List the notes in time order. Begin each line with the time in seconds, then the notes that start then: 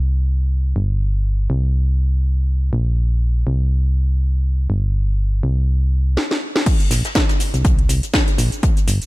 Already playing: C2
0.76 G1
1.50 C2
2.73 A#1
3.47 C2
4.70 G1
5.43 C2
6.17 snare
6.31 snare
6.56 snare
6.66 kick, closed hi-hat, crash, cabasa
6.80 closed hi-hat, cabasa
6.91 A#1, snare, closed hi-hat, open hi-hat, cabasa
7.05 snare, closed hi-hat, cabasa
7.15 kick, snare, closed hi-hat, cabasa
7.29 snare, closed hi-hat, cabasa
7.40 closed hi-hat, open hi-hat, cabasa
7.54 C2, closed hi-hat, cabasa
7.64 kick, closed hi-hat, cabasa
7.79 closed hi-hat
7.89 C2, closed hi-hat, open hi-hat, cabasa
8.03 closed hi-hat, cabasa
8.14 kick, snare, closed hi-hat, cabasa
8.28 closed hi-hat, cabasa
8.38 A#1, closed hi-hat, open hi-hat, cabasa
8.52 closed hi-hat, cabasa
8.63 kick, closed hi-hat, cabasa
8.77 closed hi-hat, cabasa
8.88 G1, closed hi-hat, open hi-hat, cabasa
9.02 closed hi-hat, cabasa